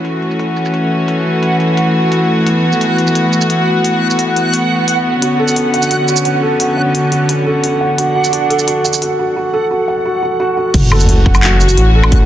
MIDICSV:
0, 0, Header, 1, 7, 480
1, 0, Start_track
1, 0, Tempo, 344828
1, 1512, Time_signature, 4, 2, 24, 8
1, 17059, End_track
2, 0, Start_track
2, 0, Title_t, "Synth texture"
2, 0, Program_c, 0, 99
2, 0, Note_on_c, 0, 78, 77
2, 13031, Note_off_c, 0, 78, 0
2, 14956, Note_on_c, 0, 78, 82
2, 17059, Note_off_c, 0, 78, 0
2, 17059, End_track
3, 0, Start_track
3, 0, Title_t, "Felt piano"
3, 0, Program_c, 1, 0
3, 0, Control_c, 1, 64, 127
3, 7268, Note_on_c, 1, 66, 81
3, 7288, Control_c, 1, 64, 0
3, 7408, Note_off_c, 1, 66, 0
3, 7507, Note_on_c, 1, 69, 100
3, 7546, Control_c, 1, 64, 127
3, 7726, Note_off_c, 1, 69, 0
3, 7748, Note_on_c, 1, 66, 73
3, 7978, Note_off_c, 1, 66, 0
3, 7989, Note_on_c, 1, 78, 72
3, 8207, Note_off_c, 1, 78, 0
3, 8227, Note_on_c, 1, 66, 80
3, 8443, Note_off_c, 1, 66, 0
3, 8464, Note_on_c, 1, 66, 72
3, 8684, Note_off_c, 1, 66, 0
3, 8705, Note_on_c, 1, 66, 68
3, 8847, Note_off_c, 1, 66, 0
3, 8946, Note_on_c, 1, 69, 98
3, 9165, Note_off_c, 1, 69, 0
3, 9186, Note_on_c, 1, 66, 77
3, 9417, Note_off_c, 1, 66, 0
3, 9426, Note_on_c, 1, 78, 75
3, 9645, Note_off_c, 1, 78, 0
3, 9668, Note_on_c, 1, 66, 70
3, 9886, Note_off_c, 1, 66, 0
3, 9907, Note_on_c, 1, 66, 70
3, 10125, Note_off_c, 1, 66, 0
3, 10146, Note_on_c, 1, 66, 79
3, 10287, Note_off_c, 1, 66, 0
3, 10390, Note_on_c, 1, 69, 92
3, 10607, Note_off_c, 1, 69, 0
3, 10627, Note_on_c, 1, 66, 69
3, 10857, Note_off_c, 1, 66, 0
3, 10869, Note_on_c, 1, 78, 73
3, 11087, Note_off_c, 1, 78, 0
3, 11107, Note_on_c, 1, 66, 81
3, 11327, Note_off_c, 1, 66, 0
3, 11348, Note_on_c, 1, 66, 74
3, 11566, Note_off_c, 1, 66, 0
3, 11587, Note_on_c, 1, 66, 74
3, 11728, Note_off_c, 1, 66, 0
3, 11827, Note_on_c, 1, 69, 95
3, 12046, Note_off_c, 1, 69, 0
3, 12073, Note_on_c, 1, 66, 79
3, 12301, Note_off_c, 1, 66, 0
3, 12316, Note_on_c, 1, 78, 71
3, 12530, Note_off_c, 1, 78, 0
3, 12558, Note_on_c, 1, 66, 74
3, 12775, Note_off_c, 1, 66, 0
3, 12796, Note_on_c, 1, 66, 72
3, 13010, Note_off_c, 1, 66, 0
3, 13034, Note_on_c, 1, 66, 79
3, 13171, Note_off_c, 1, 66, 0
3, 13272, Note_on_c, 1, 69, 99
3, 13488, Note_off_c, 1, 69, 0
3, 13512, Note_on_c, 1, 66, 74
3, 13740, Note_off_c, 1, 66, 0
3, 13752, Note_on_c, 1, 78, 76
3, 13968, Note_off_c, 1, 78, 0
3, 13995, Note_on_c, 1, 66, 81
3, 14212, Note_off_c, 1, 66, 0
3, 14233, Note_on_c, 1, 66, 71
3, 14449, Note_off_c, 1, 66, 0
3, 14474, Note_on_c, 1, 66, 98
3, 14689, Note_off_c, 1, 66, 0
3, 14715, Note_on_c, 1, 66, 74
3, 14930, Note_off_c, 1, 66, 0
3, 14970, Control_c, 1, 64, 0
3, 15195, Note_on_c, 1, 69, 107
3, 15225, Control_c, 1, 64, 127
3, 15410, Note_off_c, 1, 69, 0
3, 15432, Note_on_c, 1, 66, 78
3, 15660, Note_off_c, 1, 66, 0
3, 15673, Note_on_c, 1, 78, 78
3, 15889, Note_off_c, 1, 78, 0
3, 15913, Note_on_c, 1, 66, 84
3, 16132, Note_off_c, 1, 66, 0
3, 16153, Note_on_c, 1, 66, 72
3, 16369, Note_off_c, 1, 66, 0
3, 16390, Note_on_c, 1, 66, 76
3, 16529, Note_off_c, 1, 66, 0
3, 16634, Note_on_c, 1, 69, 101
3, 16849, Note_off_c, 1, 69, 0
3, 16876, Note_on_c, 1, 66, 85
3, 17059, Note_off_c, 1, 66, 0
3, 17059, End_track
4, 0, Start_track
4, 0, Title_t, "String section"
4, 0, Program_c, 2, 48
4, 0, Note_on_c, 2, 52, 81
4, 0, Note_on_c, 2, 57, 74
4, 0, Note_on_c, 2, 61, 71
4, 0, Note_on_c, 2, 66, 85
4, 3394, Note_off_c, 2, 61, 0
4, 3433, Note_on_c, 2, 59, 75
4, 7215, Note_off_c, 2, 57, 0
4, 7217, Note_off_c, 2, 52, 0
4, 7266, Note_on_c, 2, 61, 78
4, 7267, Note_on_c, 2, 50, 82
4, 11070, Note_off_c, 2, 61, 0
4, 11107, Note_on_c, 2, 62, 76
4, 12974, Note_off_c, 2, 50, 0
4, 12976, Note_off_c, 2, 66, 0
4, 12977, Note_off_c, 2, 59, 0
4, 13010, Note_off_c, 2, 62, 0
4, 14949, Note_on_c, 2, 52, 88
4, 14950, Note_on_c, 2, 57, 82
4, 14950, Note_on_c, 2, 61, 84
4, 14950, Note_on_c, 2, 66, 98
4, 17059, Note_off_c, 2, 52, 0
4, 17059, Note_off_c, 2, 57, 0
4, 17059, Note_off_c, 2, 61, 0
4, 17059, Note_off_c, 2, 66, 0
4, 17059, End_track
5, 0, Start_track
5, 0, Title_t, "Detuned saw bass"
5, 0, Program_c, 3, 39
5, 14952, Note_on_c, 3, 30, 97
5, 15893, Note_off_c, 3, 30, 0
5, 15912, Note_on_c, 3, 30, 95
5, 16373, Note_off_c, 3, 30, 0
5, 16392, Note_on_c, 3, 33, 95
5, 17059, Note_off_c, 3, 33, 0
5, 17059, End_track
6, 0, Start_track
6, 0, Title_t, "Sub drop"
6, 0, Program_c, 4, 103
6, 14953, Note_on_c, 4, 60, 77
6, 16873, Note_off_c, 4, 60, 0
6, 17059, End_track
7, 0, Start_track
7, 0, Title_t, "Drums"
7, 66, Note_on_c, 9, 42, 66
7, 206, Note_off_c, 9, 42, 0
7, 310, Note_on_c, 9, 42, 34
7, 431, Note_on_c, 9, 82, 34
7, 449, Note_off_c, 9, 42, 0
7, 549, Note_on_c, 9, 42, 79
7, 570, Note_off_c, 9, 82, 0
7, 688, Note_off_c, 9, 42, 0
7, 787, Note_on_c, 9, 82, 34
7, 909, Note_off_c, 9, 82, 0
7, 909, Note_on_c, 9, 82, 59
7, 1027, Note_on_c, 9, 42, 61
7, 1049, Note_off_c, 9, 82, 0
7, 1166, Note_off_c, 9, 42, 0
7, 1505, Note_on_c, 9, 42, 71
7, 1645, Note_off_c, 9, 42, 0
7, 1985, Note_on_c, 9, 42, 64
7, 2125, Note_off_c, 9, 42, 0
7, 2228, Note_on_c, 9, 42, 36
7, 2367, Note_off_c, 9, 42, 0
7, 2469, Note_on_c, 9, 42, 75
7, 2608, Note_off_c, 9, 42, 0
7, 2947, Note_on_c, 9, 42, 65
7, 3086, Note_off_c, 9, 42, 0
7, 3432, Note_on_c, 9, 42, 71
7, 3571, Note_off_c, 9, 42, 0
7, 3793, Note_on_c, 9, 82, 31
7, 3914, Note_on_c, 9, 42, 63
7, 3932, Note_off_c, 9, 82, 0
7, 4053, Note_off_c, 9, 42, 0
7, 4154, Note_on_c, 9, 42, 37
7, 4275, Note_on_c, 9, 82, 32
7, 4293, Note_off_c, 9, 42, 0
7, 4390, Note_on_c, 9, 42, 74
7, 4415, Note_off_c, 9, 82, 0
7, 4529, Note_off_c, 9, 42, 0
7, 4632, Note_on_c, 9, 82, 33
7, 4752, Note_off_c, 9, 82, 0
7, 4752, Note_on_c, 9, 82, 59
7, 4871, Note_on_c, 9, 42, 62
7, 4891, Note_off_c, 9, 82, 0
7, 5010, Note_off_c, 9, 42, 0
7, 5352, Note_on_c, 9, 42, 72
7, 5491, Note_off_c, 9, 42, 0
7, 5713, Note_on_c, 9, 82, 31
7, 5830, Note_on_c, 9, 42, 59
7, 5852, Note_off_c, 9, 82, 0
7, 5970, Note_off_c, 9, 42, 0
7, 6075, Note_on_c, 9, 42, 36
7, 6214, Note_off_c, 9, 42, 0
7, 6313, Note_on_c, 9, 42, 73
7, 6452, Note_off_c, 9, 42, 0
7, 6790, Note_on_c, 9, 42, 58
7, 6930, Note_off_c, 9, 42, 0
7, 7269, Note_on_c, 9, 42, 70
7, 7408, Note_off_c, 9, 42, 0
7, 7629, Note_on_c, 9, 82, 32
7, 7744, Note_on_c, 9, 42, 58
7, 7768, Note_off_c, 9, 82, 0
7, 7884, Note_off_c, 9, 42, 0
7, 7987, Note_on_c, 9, 42, 35
7, 8110, Note_on_c, 9, 82, 33
7, 8126, Note_off_c, 9, 42, 0
7, 8224, Note_on_c, 9, 42, 72
7, 8249, Note_off_c, 9, 82, 0
7, 8363, Note_off_c, 9, 42, 0
7, 8465, Note_on_c, 9, 82, 36
7, 8584, Note_off_c, 9, 82, 0
7, 8584, Note_on_c, 9, 82, 63
7, 8702, Note_on_c, 9, 42, 61
7, 8724, Note_off_c, 9, 82, 0
7, 8841, Note_off_c, 9, 42, 0
7, 9186, Note_on_c, 9, 42, 72
7, 9325, Note_off_c, 9, 42, 0
7, 9670, Note_on_c, 9, 42, 61
7, 9810, Note_off_c, 9, 42, 0
7, 9910, Note_on_c, 9, 42, 34
7, 10049, Note_off_c, 9, 42, 0
7, 10148, Note_on_c, 9, 42, 72
7, 10288, Note_off_c, 9, 42, 0
7, 10629, Note_on_c, 9, 42, 59
7, 10769, Note_off_c, 9, 42, 0
7, 11113, Note_on_c, 9, 42, 69
7, 11253, Note_off_c, 9, 42, 0
7, 11477, Note_on_c, 9, 82, 34
7, 11595, Note_on_c, 9, 42, 62
7, 11617, Note_off_c, 9, 82, 0
7, 11734, Note_off_c, 9, 42, 0
7, 11839, Note_on_c, 9, 42, 35
7, 11959, Note_on_c, 9, 82, 37
7, 11978, Note_off_c, 9, 42, 0
7, 12078, Note_on_c, 9, 42, 72
7, 12098, Note_off_c, 9, 82, 0
7, 12217, Note_off_c, 9, 42, 0
7, 12319, Note_on_c, 9, 82, 35
7, 12439, Note_off_c, 9, 82, 0
7, 12439, Note_on_c, 9, 82, 67
7, 12555, Note_on_c, 9, 42, 61
7, 12578, Note_off_c, 9, 82, 0
7, 12694, Note_off_c, 9, 42, 0
7, 14950, Note_on_c, 9, 42, 82
7, 14950, Note_on_c, 9, 49, 100
7, 14952, Note_on_c, 9, 36, 123
7, 15089, Note_off_c, 9, 42, 0
7, 15089, Note_off_c, 9, 49, 0
7, 15091, Note_off_c, 9, 36, 0
7, 15195, Note_on_c, 9, 77, 58
7, 15316, Note_on_c, 9, 42, 37
7, 15316, Note_on_c, 9, 82, 36
7, 15335, Note_off_c, 9, 77, 0
7, 15434, Note_off_c, 9, 42, 0
7, 15434, Note_on_c, 9, 42, 70
7, 15455, Note_off_c, 9, 82, 0
7, 15573, Note_off_c, 9, 42, 0
7, 15672, Note_on_c, 9, 36, 105
7, 15794, Note_on_c, 9, 77, 57
7, 15794, Note_on_c, 9, 82, 36
7, 15811, Note_off_c, 9, 36, 0
7, 15912, Note_on_c, 9, 39, 120
7, 15912, Note_on_c, 9, 42, 85
7, 15934, Note_off_c, 9, 77, 0
7, 15934, Note_off_c, 9, 82, 0
7, 16051, Note_off_c, 9, 39, 0
7, 16051, Note_off_c, 9, 42, 0
7, 16154, Note_on_c, 9, 82, 38
7, 16272, Note_off_c, 9, 82, 0
7, 16272, Note_on_c, 9, 82, 68
7, 16390, Note_on_c, 9, 42, 67
7, 16411, Note_off_c, 9, 82, 0
7, 16529, Note_off_c, 9, 42, 0
7, 16753, Note_on_c, 9, 77, 87
7, 16869, Note_on_c, 9, 42, 83
7, 16872, Note_on_c, 9, 36, 121
7, 16892, Note_off_c, 9, 77, 0
7, 17009, Note_off_c, 9, 42, 0
7, 17011, Note_off_c, 9, 36, 0
7, 17059, End_track
0, 0, End_of_file